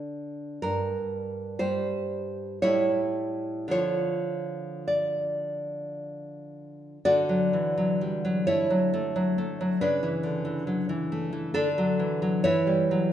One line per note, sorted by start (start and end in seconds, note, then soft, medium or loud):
0.00 0.58 D3 medium
0.00 0.63 D4 soft
0.00 0.59 A4 medium
0.62 2.58 G2 medium
0.62 1.55 A#4 medium
1.59 2.58 G3 soft
1.59 2.58 G4 soft
1.59 2.58 C5 medium
2.62 3.69 A2 medium
2.62 3.69 G3 soft
2.62 3.69 E4 soft
2.62 3.68 C#5 medium
3.68 6.97 D3 medium
3.68 6.98 F3 soft
3.68 6.99 F4 soft
3.68 4.83 C#5 medium
4.88 5.94 D5 medium
7.05 9.76 D3 medium
7.05 8.43 F#4 medium
7.05 8.42 D5 medium
7.29 7.76 F#3 soft
7.53 8.70 E3 soft
7.77 8.23 F#3 soft
8.01 9.37 G3 soft
8.25 8.47 F#3 soft
8.47 8.92 A3 soft
8.47 9.76 E4 medium
8.47 9.76 C#5 medium
8.70 9.14 F#3 soft
8.94 9.37 A3 medium
9.16 9.59 F#3 soft
9.38 9.80 A3 soft
9.61 9.81 F#3 soft
9.81 11.53 C#3 medium
9.81 11.52 D4 medium
9.81 11.52 B4 medium
10.03 10.44 E3 soft
10.23 11.12 D3 soft
10.45 10.67 E3 soft
10.67 10.89 F#3 soft
10.89 11.31 E3 soft
11.12 11.54 A3 soft
11.33 11.55 E3 soft
11.54 12.43 D3 medium
11.54 12.42 D4 medium
11.54 12.42 A4 medium
11.78 12.21 F#3 soft
11.99 12.44 E3 soft
12.22 12.45 F#3 soft
12.44 13.13 E3 medium
12.44 13.13 E4 medium
12.44 13.13 C#5 medium
12.67 13.10 G3 soft
12.91 13.13 F#3 soft